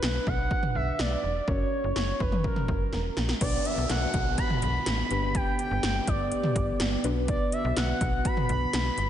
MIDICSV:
0, 0, Header, 1, 7, 480
1, 0, Start_track
1, 0, Key_signature, 2, "minor"
1, 0, Tempo, 483871
1, 1465, Time_signature, 4, 2, 24, 8
1, 9023, End_track
2, 0, Start_track
2, 0, Title_t, "Analog synth lead"
2, 0, Program_c, 0, 81
2, 28, Note_on_c, 0, 71, 101
2, 267, Note_on_c, 0, 78, 114
2, 282, Note_off_c, 0, 71, 0
2, 741, Note_off_c, 0, 78, 0
2, 746, Note_on_c, 0, 76, 99
2, 987, Note_on_c, 0, 74, 93
2, 1002, Note_off_c, 0, 76, 0
2, 1465, Note_on_c, 0, 73, 100
2, 1480, Note_off_c, 0, 74, 0
2, 1941, Note_off_c, 0, 73, 0
2, 1947, Note_on_c, 0, 73, 90
2, 2185, Note_on_c, 0, 71, 82
2, 2200, Note_off_c, 0, 73, 0
2, 2421, Note_off_c, 0, 71, 0
2, 2427, Note_on_c, 0, 70, 79
2, 3106, Note_off_c, 0, 70, 0
2, 3387, Note_on_c, 0, 74, 94
2, 3625, Note_on_c, 0, 76, 93
2, 3640, Note_off_c, 0, 74, 0
2, 3859, Note_off_c, 0, 76, 0
2, 3865, Note_on_c, 0, 78, 103
2, 4311, Note_off_c, 0, 78, 0
2, 4345, Note_on_c, 0, 83, 111
2, 4568, Note_off_c, 0, 83, 0
2, 4587, Note_on_c, 0, 83, 112
2, 5310, Note_on_c, 0, 79, 109
2, 5325, Note_off_c, 0, 83, 0
2, 5543, Note_off_c, 0, 79, 0
2, 5549, Note_on_c, 0, 79, 105
2, 6029, Note_on_c, 0, 74, 89
2, 6044, Note_off_c, 0, 79, 0
2, 6987, Note_off_c, 0, 74, 0
2, 7226, Note_on_c, 0, 74, 89
2, 7449, Note_off_c, 0, 74, 0
2, 7467, Note_on_c, 0, 76, 85
2, 7689, Note_off_c, 0, 76, 0
2, 7706, Note_on_c, 0, 78, 96
2, 8187, Note_on_c, 0, 83, 101
2, 8202, Note_off_c, 0, 78, 0
2, 8422, Note_off_c, 0, 83, 0
2, 8428, Note_on_c, 0, 83, 108
2, 9023, Note_off_c, 0, 83, 0
2, 9023, End_track
3, 0, Start_track
3, 0, Title_t, "Analog synth pad"
3, 0, Program_c, 1, 89
3, 3383, Note_on_c, 1, 59, 70
3, 3384, Note_on_c, 1, 50, 76
3, 3384, Note_on_c, 1, 66, 82
3, 5048, Note_off_c, 1, 66, 0
3, 5063, Note_on_c, 1, 67, 83
3, 6965, Note_off_c, 1, 67, 0
3, 6984, Note_on_c, 1, 66, 86
3, 9023, Note_off_c, 1, 50, 0
3, 9023, Note_off_c, 1, 59, 0
3, 9023, Note_off_c, 1, 66, 0
3, 9023, End_track
4, 0, Start_track
4, 0, Title_t, "Synth keys"
4, 0, Program_c, 2, 88
4, 0, Note_on_c, 2, 62, 77
4, 0, Note_on_c, 2, 66, 69
4, 0, Note_on_c, 2, 71, 87
4, 1187, Note_off_c, 2, 62, 0
4, 1187, Note_off_c, 2, 66, 0
4, 1187, Note_off_c, 2, 71, 0
4, 1466, Note_on_c, 2, 61, 62
4, 1466, Note_on_c, 2, 66, 58
4, 1466, Note_on_c, 2, 70, 70
4, 3347, Note_off_c, 2, 61, 0
4, 3347, Note_off_c, 2, 66, 0
4, 3347, Note_off_c, 2, 70, 0
4, 3384, Note_on_c, 2, 71, 74
4, 3385, Note_on_c, 2, 62, 65
4, 3385, Note_on_c, 2, 66, 57
4, 5031, Note_off_c, 2, 62, 0
4, 5031, Note_off_c, 2, 66, 0
4, 5031, Note_off_c, 2, 71, 0
4, 5065, Note_on_c, 2, 62, 67
4, 5065, Note_on_c, 2, 67, 61
4, 5065, Note_on_c, 2, 71, 75
4, 6946, Note_off_c, 2, 67, 0
4, 6946, Note_off_c, 2, 71, 0
4, 6947, Note_off_c, 2, 62, 0
4, 6986, Note_on_c, 2, 62, 82
4, 6986, Note_on_c, 2, 66, 75
4, 6986, Note_on_c, 2, 71, 93
4, 8632, Note_off_c, 2, 62, 0
4, 8632, Note_off_c, 2, 66, 0
4, 8632, Note_off_c, 2, 71, 0
4, 8666, Note_on_c, 2, 62, 51
4, 8666, Note_on_c, 2, 66, 46
4, 8666, Note_on_c, 2, 71, 56
4, 9023, Note_off_c, 2, 62, 0
4, 9023, Note_off_c, 2, 66, 0
4, 9023, Note_off_c, 2, 71, 0
4, 9023, End_track
5, 0, Start_track
5, 0, Title_t, "FM bass"
5, 0, Program_c, 3, 39
5, 26, Note_on_c, 3, 35, 102
5, 194, Note_off_c, 3, 35, 0
5, 266, Note_on_c, 3, 35, 97
5, 518, Note_off_c, 3, 35, 0
5, 746, Note_on_c, 3, 35, 94
5, 914, Note_off_c, 3, 35, 0
5, 987, Note_on_c, 3, 35, 91
5, 1154, Note_off_c, 3, 35, 0
5, 1226, Note_on_c, 3, 28, 85
5, 1394, Note_off_c, 3, 28, 0
5, 1465, Note_on_c, 3, 30, 106
5, 1633, Note_off_c, 3, 30, 0
5, 1826, Note_on_c, 3, 30, 97
5, 1910, Note_off_c, 3, 30, 0
5, 1946, Note_on_c, 3, 30, 103
5, 2114, Note_off_c, 3, 30, 0
5, 2185, Note_on_c, 3, 30, 103
5, 2437, Note_off_c, 3, 30, 0
5, 2663, Note_on_c, 3, 30, 103
5, 2831, Note_off_c, 3, 30, 0
5, 2905, Note_on_c, 3, 28, 88
5, 3073, Note_off_c, 3, 28, 0
5, 3146, Note_on_c, 3, 34, 88
5, 3314, Note_off_c, 3, 34, 0
5, 3384, Note_on_c, 3, 35, 99
5, 3553, Note_off_c, 3, 35, 0
5, 3746, Note_on_c, 3, 35, 90
5, 3830, Note_off_c, 3, 35, 0
5, 3866, Note_on_c, 3, 35, 103
5, 4033, Note_off_c, 3, 35, 0
5, 4105, Note_on_c, 3, 35, 94
5, 4357, Note_off_c, 3, 35, 0
5, 4586, Note_on_c, 3, 35, 102
5, 4754, Note_off_c, 3, 35, 0
5, 4826, Note_on_c, 3, 33, 95
5, 4994, Note_off_c, 3, 33, 0
5, 5067, Note_on_c, 3, 31, 99
5, 5402, Note_off_c, 3, 31, 0
5, 5665, Note_on_c, 3, 31, 101
5, 5749, Note_off_c, 3, 31, 0
5, 5786, Note_on_c, 3, 31, 98
5, 5954, Note_off_c, 3, 31, 0
5, 6026, Note_on_c, 3, 31, 98
5, 6278, Note_off_c, 3, 31, 0
5, 6503, Note_on_c, 3, 31, 99
5, 6672, Note_off_c, 3, 31, 0
5, 6744, Note_on_c, 3, 31, 93
5, 6912, Note_off_c, 3, 31, 0
5, 6984, Note_on_c, 3, 35, 99
5, 7321, Note_off_c, 3, 35, 0
5, 7584, Note_on_c, 3, 35, 107
5, 7668, Note_off_c, 3, 35, 0
5, 7704, Note_on_c, 3, 35, 103
5, 7872, Note_off_c, 3, 35, 0
5, 7945, Note_on_c, 3, 35, 92
5, 8197, Note_off_c, 3, 35, 0
5, 8424, Note_on_c, 3, 35, 110
5, 8592, Note_off_c, 3, 35, 0
5, 8665, Note_on_c, 3, 35, 94
5, 8833, Note_off_c, 3, 35, 0
5, 8905, Note_on_c, 3, 31, 86
5, 9023, Note_off_c, 3, 31, 0
5, 9023, End_track
6, 0, Start_track
6, 0, Title_t, "Downlifter"
6, 0, Program_c, 4, 103
6, 3383, Note_on_c, 4, 60, 83
6, 7224, Note_off_c, 4, 60, 0
6, 9023, End_track
7, 0, Start_track
7, 0, Title_t, "Drums"
7, 25, Note_on_c, 9, 38, 116
7, 125, Note_off_c, 9, 38, 0
7, 266, Note_on_c, 9, 36, 85
7, 365, Note_off_c, 9, 36, 0
7, 504, Note_on_c, 9, 36, 90
7, 603, Note_off_c, 9, 36, 0
7, 623, Note_on_c, 9, 45, 92
7, 722, Note_off_c, 9, 45, 0
7, 984, Note_on_c, 9, 38, 113
7, 1083, Note_off_c, 9, 38, 0
7, 1465, Note_on_c, 9, 36, 104
7, 1564, Note_off_c, 9, 36, 0
7, 1943, Note_on_c, 9, 38, 113
7, 2043, Note_off_c, 9, 38, 0
7, 2185, Note_on_c, 9, 36, 85
7, 2285, Note_off_c, 9, 36, 0
7, 2304, Note_on_c, 9, 47, 91
7, 2403, Note_off_c, 9, 47, 0
7, 2423, Note_on_c, 9, 36, 87
7, 2523, Note_off_c, 9, 36, 0
7, 2542, Note_on_c, 9, 45, 89
7, 2641, Note_off_c, 9, 45, 0
7, 2663, Note_on_c, 9, 36, 85
7, 2762, Note_off_c, 9, 36, 0
7, 2902, Note_on_c, 9, 38, 53
7, 3002, Note_off_c, 9, 38, 0
7, 3142, Note_on_c, 9, 38, 88
7, 3241, Note_off_c, 9, 38, 0
7, 3262, Note_on_c, 9, 38, 81
7, 3361, Note_off_c, 9, 38, 0
7, 3383, Note_on_c, 9, 42, 70
7, 3383, Note_on_c, 9, 49, 90
7, 3384, Note_on_c, 9, 36, 107
7, 3482, Note_off_c, 9, 42, 0
7, 3482, Note_off_c, 9, 49, 0
7, 3483, Note_off_c, 9, 36, 0
7, 3623, Note_on_c, 9, 42, 74
7, 3722, Note_off_c, 9, 42, 0
7, 3864, Note_on_c, 9, 38, 121
7, 3864, Note_on_c, 9, 42, 68
7, 3963, Note_off_c, 9, 38, 0
7, 3964, Note_off_c, 9, 42, 0
7, 4104, Note_on_c, 9, 42, 74
7, 4105, Note_on_c, 9, 36, 91
7, 4204, Note_off_c, 9, 36, 0
7, 4204, Note_off_c, 9, 42, 0
7, 4343, Note_on_c, 9, 36, 96
7, 4344, Note_on_c, 9, 42, 75
7, 4443, Note_off_c, 9, 36, 0
7, 4443, Note_off_c, 9, 42, 0
7, 4463, Note_on_c, 9, 45, 97
7, 4563, Note_off_c, 9, 45, 0
7, 4584, Note_on_c, 9, 42, 79
7, 4684, Note_off_c, 9, 42, 0
7, 4824, Note_on_c, 9, 38, 116
7, 4825, Note_on_c, 9, 42, 80
7, 4923, Note_off_c, 9, 38, 0
7, 4924, Note_off_c, 9, 42, 0
7, 5065, Note_on_c, 9, 42, 66
7, 5164, Note_off_c, 9, 42, 0
7, 5305, Note_on_c, 9, 36, 107
7, 5305, Note_on_c, 9, 42, 70
7, 5404, Note_off_c, 9, 36, 0
7, 5404, Note_off_c, 9, 42, 0
7, 5544, Note_on_c, 9, 42, 75
7, 5644, Note_off_c, 9, 42, 0
7, 5785, Note_on_c, 9, 38, 120
7, 5786, Note_on_c, 9, 42, 72
7, 5884, Note_off_c, 9, 38, 0
7, 5885, Note_off_c, 9, 42, 0
7, 6026, Note_on_c, 9, 36, 90
7, 6026, Note_on_c, 9, 42, 74
7, 6125, Note_off_c, 9, 36, 0
7, 6125, Note_off_c, 9, 42, 0
7, 6265, Note_on_c, 9, 42, 77
7, 6365, Note_off_c, 9, 42, 0
7, 6384, Note_on_c, 9, 45, 98
7, 6483, Note_off_c, 9, 45, 0
7, 6504, Note_on_c, 9, 36, 90
7, 6505, Note_on_c, 9, 42, 77
7, 6603, Note_off_c, 9, 36, 0
7, 6604, Note_off_c, 9, 42, 0
7, 6744, Note_on_c, 9, 38, 115
7, 6745, Note_on_c, 9, 42, 80
7, 6843, Note_off_c, 9, 38, 0
7, 6844, Note_off_c, 9, 42, 0
7, 6984, Note_on_c, 9, 42, 67
7, 7083, Note_off_c, 9, 42, 0
7, 7224, Note_on_c, 9, 42, 68
7, 7225, Note_on_c, 9, 36, 107
7, 7323, Note_off_c, 9, 42, 0
7, 7324, Note_off_c, 9, 36, 0
7, 7463, Note_on_c, 9, 42, 75
7, 7562, Note_off_c, 9, 42, 0
7, 7703, Note_on_c, 9, 38, 123
7, 7704, Note_on_c, 9, 42, 73
7, 7803, Note_off_c, 9, 38, 0
7, 7803, Note_off_c, 9, 42, 0
7, 7946, Note_on_c, 9, 36, 92
7, 7946, Note_on_c, 9, 42, 77
7, 8045, Note_off_c, 9, 36, 0
7, 8045, Note_off_c, 9, 42, 0
7, 8184, Note_on_c, 9, 36, 94
7, 8184, Note_on_c, 9, 42, 75
7, 8283, Note_off_c, 9, 36, 0
7, 8284, Note_off_c, 9, 42, 0
7, 8303, Note_on_c, 9, 45, 96
7, 8403, Note_off_c, 9, 45, 0
7, 8424, Note_on_c, 9, 42, 78
7, 8523, Note_off_c, 9, 42, 0
7, 8664, Note_on_c, 9, 38, 114
7, 8665, Note_on_c, 9, 42, 82
7, 8763, Note_off_c, 9, 38, 0
7, 8764, Note_off_c, 9, 42, 0
7, 8904, Note_on_c, 9, 42, 67
7, 9004, Note_off_c, 9, 42, 0
7, 9023, End_track
0, 0, End_of_file